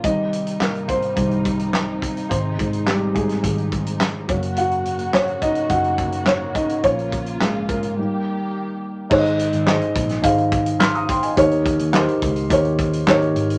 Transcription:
0.03 C2 C3 D#3 G3 C4 D#4 D#5, kick, closed hi-hat
0.33 closed hi-hat
0.47 closed hi-hat
0.60 A#3 A#4, snare, clap
0.75 closed hi-hat
0.88 C4 C5, kick, closed hi-hat
1.02 closed hi-hat
1.16 C2 D#3 G3 C4 C5, kick, closed hi-hat
1.31 closed hi-hat
1.45 kick, closed hi-hat
1.59 closed hi-hat
1.73 snare, clap
2.02 kick, closed hi-hat
2.17 closed hi-hat
2.29 G#1 G#3 C4 C5, kick, closed hi-hat
2.58 D#3 G#3 C4, kick, closed hi-hat
2.73 closed hi-hat
2.86 G3 G4, snare, clap
3.15 G#3 G#4, kick, closed hi-hat
3.29 snare, closed hi-hat
3.43 G#1 G#3 G#4, kick, closed hi-hat
3.58 closed hi-hat
3.72 kick, closed hi-hat
3.86 closed hi-hat
4.00 snare, clap
4.28 F#1 C#3 F#3 A#3 C#4 F#4, kick, closed hi-hat
4.42 closed hi-hat
4.56 F#4 F#5, closed hi-hat
4.71 closed hi-hat
4.85 closed hi-hat
4.99 closed hi-hat
5.13 C#4 C#5, snare, clap
5.28 closed hi-hat
5.42 D#4 D#5, kick, closed hi-hat
5.55 closed hi-hat
5.69 F#1 F#4 F#5, kick, closed hi-hat
5.84 closed hi-hat
5.98 kick, closed hi-hat
6.12 closed hi-hat
6.26 C#4 C#5, snare, clap
6.54 D#4 D#5, kick, closed hi-hat
6.69 closed hi-hat
6.84 A#1 F3 A#3 C#4 F4 C#5, kick, closed hi-hat
6.99 closed hi-hat
7.12 kick, closed hi-hat
7.26 closed hi-hat
7.40 G#3 G#4, snare, clap
7.68 A#3 A#4, kick, closed hi-hat
7.83 closed hi-hat
7.96 D#3 G3 A#3 D#4 G4
9.10 G#1 G#2 D#4 G#4 C5 C#5, kick, crash
9.18 D#5
9.25 closed hi-hat
9.39 closed hi-hat
9.53 G#1, closed hi-hat
9.66 D#4 G#4 C5 D#5, snare, clap
9.81 closed hi-hat
9.96 A#1, kick, closed hi-hat
10.09 snare, closed hi-hat
10.22 G#1 D#4 G#4 C5 F5, kick, closed hi-hat
10.38 closed hi-hat
10.52 kick, closed hi-hat
10.66 closed hi-hat
10.80 C6 F6, snare, clap
10.95 A#5 D#6, closed hi-hat
11.09 G5 C6, kick, closed hi-hat
11.23 D#5 G#5, closed hi-hat
11.36 D#2 D#3 D#4 G4 A#4 C#5, kick, closed hi-hat
11.51 closed hi-hat
11.66 kick, closed hi-hat
11.79 D#2, closed hi-hat
11.93 D#4 G4 A#4 C5, snare, clap
12.08 closed hi-hat
12.22 C#2, kick, closed hi-hat
12.36 closed hi-hat
12.50 D#2 D#4 G4 A#4 C#5, kick, closed hi-hat
12.65 closed hi-hat
12.79 kick, closed hi-hat
12.93 closed hi-hat
13.07 D#2 D#4 G4 A#4 C#5, snare, clap
13.22 closed hi-hat
13.36 G#1, closed hi-hat
13.50 closed hi-hat

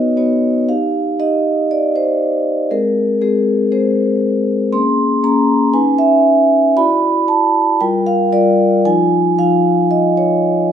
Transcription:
Already playing: B3 D#4 F#4 B4 C#5 D#5
0.17 B3 D#4 F#4 C#5
0.69 D#4 G4 F5
1.20 D#4 G4 D#5
1.71 D5
1.96 C5
2.70 G#3 C4 G#4 A#4
3.22 G#3 C4 G#4
3.72 G#3 C4 G#4 C5
4.73 A#3 C#4 G#4 C6
5.23 A#3 C#4 G#4 A#5
5.73 C#4 D#4 B4 G#5
5.98 E5
6.77 E4 F#4 D5 B5
7.28 A5
7.80 G3 F4 A#4 G5
8.06 F5
8.32 G3 F4 A#4 D5
8.85 F3 D#4 F4 G#5
9.38 F3 D#4 F4 F5
9.91 D#5
10.17 C#5

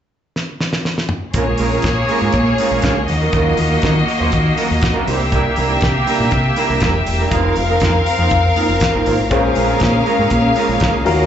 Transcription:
0.36 snare
0.61 snare
0.73 snare
0.85 snare
0.98 snare
1.09 mid tom
1.34 A#1 G#3 A#3 C#4 F4 G#4 A#4 C#5, kick, closed hi-hat
1.46 muted clean electric guitar stroke
1.58 A#1 G#3 C#4 F4 A#4, open hi-hat
1.71 G#3 C#4 F4 A#4
1.82 A#2, muted clean electric guitar stroke, kick, snare, closed hi-hat
1.97 muted clean electric guitar stroke
2.08 G#3 C#4 F4 A#4, open hi-hat
2.21 G#2 G#3 C#4 F4 A#4
2.32 A#2, kick, closed hi-hat
2.46 muted clean electric guitar stroke
2.58 G#3 C#4 F4 A#4, open hi-hat
2.71 A#1 G#3 C#4 F4 A#4
2.82 C#2 G#3 C#4 F4 A#4, kick, snare, closed hi-hat
2.96 muted clean electric guitar stroke
3.07 D#2 A#3 F#4 D#5, muted clean electric guitar stroke, open hi-hat
3.21 F#3 C#4 F4 A#4
3.33 D#2 F#3 C#4 F4 A#4, kick, closed hi-hat
3.57 D#2, muted clean electric guitar stroke, open hi-hat
3.70 F#3 C#4 F4 A#4
3.82 D#3 F#3 C#4 F4 A#4, kick, snare, closed hi-hat
3.95 muted clean electric guitar stroke
4.07 muted clean electric guitar stroke, open hi-hat
4.19 D#2 F#3 C#4 F4 C5
4.32 D#3, kick, closed hi-hat
4.45 muted clean electric guitar stroke
4.56 F#3 C#4 F4 A#4, open hi-hat
4.69 D#2, muted clean electric guitar stroke
4.81 muted clean electric guitar stroke, kick, snare, closed hi-hat
4.94 F#3 C#4 F4 A#4
5.06 C2 G3 A#3 D4 E4 G4 C5 E5, open hi-hat
5.19 muted clean electric guitar stroke
5.32 G3 D4 E4 A#4, kick, closed hi-hat
5.44 muted clean electric guitar stroke
5.56 C2 G3 D4 E4 A#4, open hi-hat
5.69 G3 D4 E4 A#4
5.81 C3, muted clean electric guitar stroke, kick, snare, closed hi-hat
5.94 muted clean electric guitar stroke
6.06 G3 D4 E4 A#4, open hi-hat
6.19 A#2 G3 D4 E4 A#4
6.31 C3, muted clean electric guitar stroke, kick, closed hi-hat
6.44 muted clean electric guitar stroke
6.56 G3 D4 E4 A#4, open hi-hat
6.69 C2 G3 D4 E4 A#4
6.80 E1 G3 D4 E4 A#4, kick, snare, closed hi-hat
6.94 muted clean electric guitar stroke
7.06 E1, muted clean electric guitar stroke, open hi-hat
7.19 G3 D4 E4 A#4
7.31 F1 A#3 C4 D#4 F4 A#4 F5, kick, closed hi-hat
7.56 F1, muted clean electric guitar stroke, open hi-hat
7.69 A#3 D#4 F4 A#4
7.80 F2 A#3 D#4 F4 A#4, kick, snare, closed hi-hat
7.94 muted clean electric guitar stroke
8.06 muted clean electric guitar stroke, open hi-hat
8.18 F2 A#3 D#4 F4 C5
8.30 F2, kick, closed hi-hat
8.43 muted clean electric guitar stroke
8.56 A#3 D#4 F4 A#4, open hi-hat
8.68 F1, muted clean electric guitar stroke
8.80 muted clean electric guitar stroke, kick, snare, closed hi-hat
8.93 G1 A#3 D#4 F4 A#4
9.06 G#1 A#3 D#4 F4 C5, open hi-hat
9.18 A1, muted clean electric guitar stroke
9.30 A#1 C#3 G#3 A#3 C#4 F4 G#4 A#4 C5 F5, kick, closed hi-hat
9.43 muted clean electric guitar stroke
9.55 A#1 G#3 C#4 F4 A#4, open hi-hat
9.68 G#3 C#4 F4 A#4
9.80 A#2, muted clean electric guitar stroke, kick, snare, closed hi-hat
9.93 muted clean electric guitar stroke
10.05 G#3 C#4 F4 A#4, open hi-hat
10.18 G#2 G#3 C#4 F4 A#4
10.30 A#2, muted clean electric guitar stroke, kick, closed hi-hat
10.43 muted clean electric guitar stroke
10.55 G#3 C#4 F4 A#4, open hi-hat
10.68 A#1 G#3 C#4 F4 A#4
10.80 C#2 G#3 C#4 F4 A#4, kick, snare, closed hi-hat
10.94 muted clean electric guitar stroke
11.05 D#2 C#3 F#3 A#3 C#4 F4 F#4 A#4 D#5 F5, open hi-hat
11.19 F#3 C#4 F4 A#4

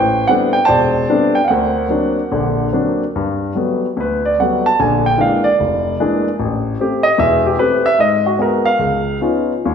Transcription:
Already playing: A1 A2 B4 C5 G5
0.28 G3 A3 B3 C4 D4 F#5
0.53 G5
0.65 E1 C5 D5 A5
1.10 G3 A3 B3 C4 D4
1.35 G5
1.44 F5 F#5
1.50 D2 A#4 C5
1.89 F#3 A#3 C4 D4
2.31 A#1 D3
2.73 F#3 A#3 C4 D4
3.16 G2
3.55 F#3 G3 A3 B3
3.97 D2 B4
4.25 D5
4.40 F#3 G3 A3 B3 F#5
4.66 A5
4.80 A#1 D3 G#5
5.06 G5
5.18 E3 G#3 A#3 D4 F5
5.44 D5
5.60 F1
6.00 E3 G#3 A#3 D4
6.40 A1
6.80 A3 C4 G4
7.03 D#5
7.18 E1 E2 E5
7.47 G4
7.59 A3 C4 G4 B4
7.86 E5
7.99 G#2 D#5
8.26 F#4
8.39 G#3 B3 F#4 A#4
8.65 F5
8.79 C#2
9.21 B3 C#4 D#4 F4
9.65 D#2

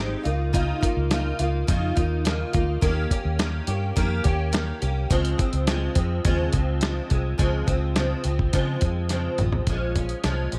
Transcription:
Already playing: G#1 G#3 C4 D#4 G4
0.24 C#2 A#3 D#4 F4, closed hi-hat
0.53 C#3 A#3 D#4 F4, kick, closed hi-hat
0.81 A#3 D#4 F4, kick, closed hi-hat
0.97 C#2
1.10 C#3 A#3 D#4 F4, snare, closed hi-hat
1.39 C#2 A#3 D#4 F4, closed hi-hat
1.67 F2 C#3 A#3 D#4 F4, kick, snare, closed hi-hat
1.95 D#2 A#3 D#4 F4, kick, closed hi-hat
2.25 C#3 A#3 D#4 F4, snare, closed hi-hat
2.53 D2 A#3 D#4 F4, kick, closed hi-hat
2.81 D#2 D#3 A#3 C#4 G4, kick, closed hi-hat
3.10 A#3 C#4 G4, kick, closed hi-hat
3.25 D#2
3.39 D#3 A#3 C#4 G4, snare, closed hi-hat
3.67 G2 A#3 C#4 G4, closed hi-hat
3.96 F2 D#3 A#3 C#4 G4, kick, snare, closed hi-hat
4.24 D#2 A#3 C#4 G4, kick, closed hi-hat
4.52 D#3 A#3 C#4 G4, snare, closed hi-hat
4.82 C2 A#3 C#4 G4, closed hi-hat
5.10 C#2 C#3 F3 G#3 C4, kick, closed hi-hat
5.25 closed hi-hat
5.38 F3 G#3 C4, kick, closed hi-hat
5.53 C#2, closed hi-hat
5.67 C#3 F3 G#3 C4, snare, closed hi-hat
5.95 F2 F3 G#3 C4, kick, closed hi-hat
6.24 D#2 C#3 F3 G#3 C4, kick, closed hi-hat
6.53 C#2 F3 G#3 C4, kick, closed hi-hat
6.81 C#3 F3 G#3 C4, snare, closed hi-hat
7.10 C2 F3 G#3 C4, kick, closed hi-hat
7.38 C#2 C#3 F3 G#3 C4, kick, closed hi-hat
7.67 C#2 F3 G#3 C4, kick, closed hi-hat
7.96 C#3 F3 G#3 C4, snare, closed hi-hat
8.24 C#2 F3 G#3 C4, closed hi-hat
8.39 kick
8.53 C#3 F3 G#3 C4, kick, snare, closed hi-hat
8.81 F2 F3 G#3 C4, kick, closed hi-hat
9.09 C#3 F3 G#3 C4, snare, closed hi-hat
9.38 A1 F3 G#3 C4, closed hi-hat, mid tom
9.52 floor tom
9.67 A#1 A#2 F3 G#3 C#4, kick, closed hi-hat
9.96 F3 G#3 C#4, kick, closed hi-hat
10.09 closed hi-hat
10.24 C2 A#2 F3 G#3 C#4, snare, closed hi-hat
10.52 A#1 F3 G#3 C#4, closed hi-hat

